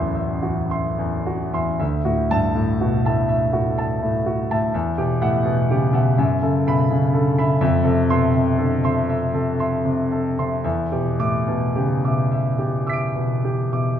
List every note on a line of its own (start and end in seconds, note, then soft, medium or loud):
0.00 1.76 A1 medium
0.00 1.80 D2 soft
0.00 0.42 E2 soft
0.00 1.81 F#2 soft
0.00 0.42 F#4 soft
0.00 0.15 E5 medium
0.00 0.71 C6 medium
0.15 0.59 E5 soft
0.42 0.87 E2 soft
0.42 0.87 F#4 soft
0.70 0.95 E5 soft
0.70 0.96 C6 soft
0.98 1.43 E2 soft
1.26 1.69 F#4 soft
1.53 1.80 E2 soft
1.53 1.77 E5 soft
1.53 1.77 C6 soft
1.80 4.70 D2 medium
1.80 2.21 E5 soft
2.05 2.46 A2 soft
2.05 2.46 F#4 soft
2.31 2.57 G2 soft
2.31 2.54 E5 soft
2.31 2.54 A5 medium
2.55 2.95 A2 soft
2.81 3.05 B2 soft
2.81 3.20 F#4 soft
3.05 3.44 A2 soft
3.05 3.27 E5 soft
3.05 3.28 A5 soft
3.29 3.68 E5 soft
3.53 3.92 A2 soft
3.53 3.92 F#4 soft
3.78 3.99 E5 soft
3.78 4.00 A5 soft
4.02 4.40 A2 soft
4.26 4.64 F#4 soft
4.51 4.74 A2 soft
4.51 4.72 E5 soft
4.51 4.72 A5 soft
4.74 6.14 E2 medium
4.74 5.12 E5 soft
4.98 5.36 B2 soft
4.98 5.36 G4 soft
5.22 5.46 A2 soft
5.22 5.43 E5 soft
5.22 5.43 F#5 medium
5.45 5.84 B2 medium
5.70 5.94 C#3 soft
5.70 6.08 G4 soft
5.93 6.17 B2 soft
5.93 6.15 E5 soft
5.93 6.15 F#5 soft
6.18 7.58 F#2 medium
6.18 6.56 E5 medium
6.42 6.80 C#3 soft
6.42 6.80 A4 soft
6.67 6.90 B2 soft
6.67 6.88 E5 soft
6.67 6.88 B5 medium
6.90 7.29 C#3 medium
7.13 7.37 D3 soft
7.13 7.52 A4 soft
7.38 7.62 C#3 soft
7.38 7.60 E5 soft
7.38 7.59 B5 medium
7.61 10.60 F2 medium
7.61 7.99 E5 medium
7.84 8.23 C3 medium
7.84 8.23 A4 medium
8.10 8.34 B2 soft
8.10 8.32 E5 soft
8.10 8.32 C6 medium
8.34 8.74 C3 medium
8.58 8.84 D3 soft
8.58 8.98 A4 soft
8.84 9.24 C3 soft
8.84 9.06 E5 soft
8.84 9.07 C6 medium
9.10 9.49 E5 soft
9.33 9.74 C3 soft
9.33 9.74 A4 soft
9.59 9.82 E5 soft
9.59 9.82 C6 soft
9.85 10.27 C3 soft
10.12 10.54 A4 soft
10.38 10.65 C3 soft
10.38 10.62 E5 soft
10.38 10.62 C6 soft
10.64 13.96 E2 medium
10.64 11.09 E5 soft
10.92 11.37 B2 soft
10.92 11.37 G4 soft
11.19 11.48 A2 soft
11.19 11.45 E5 soft
11.19 11.45 D6 medium
11.48 11.93 B2 soft
11.76 12.04 C#3 soft
11.76 12.21 G4 soft
12.04 12.49 B2 soft
12.04 12.29 E5 soft
12.04 12.30 D6 soft
12.32 12.76 E5 soft
12.59 13.04 B2 soft
12.59 13.04 G4 soft
12.87 13.12 E5 soft
12.87 13.12 D6 soft
12.87 13.95 E6 soft
12.87 13.97 B6 soft
12.93 13.99 D7 soft
13.15 13.61 B2 soft
13.45 13.89 G4 soft
13.72 14.00 B2 soft
13.72 13.97 E5 soft
13.72 13.98 D6 soft